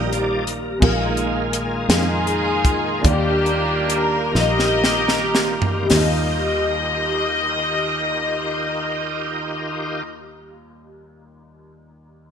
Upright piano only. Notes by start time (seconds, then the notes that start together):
Already playing: D#3 G3 D#4 F4 D5
0.80 A#2 G#3 D#4 F4 A#4
1.87 G#3 D#4 F4 G#4
3.02 D#3 G3 D4 F4 D5
4.32 G3 D#4 F4 D#5
5.83 G3
5.87 D#2 D#4
5.92 F4
5.96 D#5